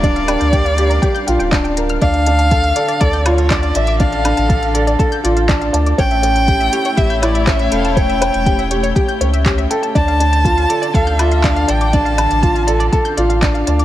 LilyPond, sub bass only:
\new Staff \with { instrumentName = "Sub bass" } { \clef bass \time 4/4 \key d \minor \tempo 4 = 121 d,,8. d,4~ d,16 r8 bes,,16 d,,4~ d,,16 | d,4. r8 d,4. a,,8~ | a,,8. a,,4~ a,,16 r8 a,,4 d,8 | a,,4. r8 a,,4. e,,8~ |
e,,8. e,,4~ e,,16 r8 cis,4 r8 | d,4. r8 d,4. a,,8~ | a,,8. a,,4~ a,,16 r8 a,,4 d,8 | }